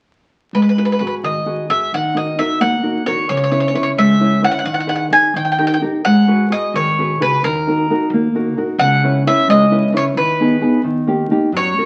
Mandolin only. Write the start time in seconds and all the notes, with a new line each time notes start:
0.55 B4
0.62 B4
0.69 B4
0.78 B4
0.85 B4
0.92 B4
0.99 B4
1.07 B4
1.24 D#5
1.70 E5
1.94 F#5
2.17 D#5
2.39 E5
2.61 F#5
3.06 C#5
3.29 C#5
3.37 C#5
3.44 C#5
3.52 C#5
3.60 C#5
3.68 C#5
3.75 C#5
3.83 C#5
3.98 E5
4.44 F#5
4.51 F#5
4.59 F#5
4.66 F#5
4.74 F#5
4.80 F#5
4.89 F#5
4.96 F#5
5.13 G#5
5.36 G5
5.45 G5
5.52 G5
5.58 G5
5.67 G5
5.74 G5
6.05 F#5
6.52 D#5
6.76 C#5
7.22 B4
7.44 A#4
8.79 F#5
9.27 E5
9.50 D#5
9.97 C#5
10.17 B4
11.57 C#5